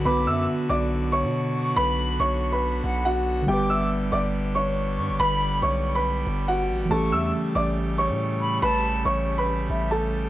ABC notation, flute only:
X:1
M:4/4
L:1/8
Q:1/4=140
K:Bm
V:1 name="Flute"
d'2 z4 z c' | b2 z3 f z2 | d'2 z4 z c' | b2 z6 |
c'2 z4 z b | a2 z3 e z2 |]